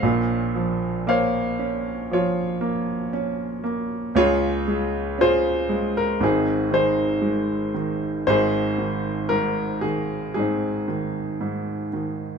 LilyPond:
<<
  \new Staff \with { instrumentName = "Grand piano" } { \time 4/4 \key aes \major \tempo 4 = 58 << { f''4 f''4 des''4. r8 | des''4 c''8. bes'16 aes'8 c''4 r8 | c''4 bes'8 aes'8 aes'4. r8 | } \\ { <c'' des''>4 <c'' des''>4 f'2 | <f' aes'>4 <f' aes'>4 <c' ees'>8 <ees' aes'>4. | <ees' aes'>2 <c' ees'>2 | } >> }
  \new Staff \with { instrumentName = "Grand piano" } { \clef bass \time 4/4 \key aes \major <bes,, bes,>8 f8 bes8 des'8 f8 bes8 des'8 bes8 | <des, des>8 aes8 des'8 aes8 <aes,, aes,>8 ees8 aes8 ees8 | <aes,, aes,>8 ees8 aes,8 ees8 aes,8 ees8 aes,8 ees8 | }
>>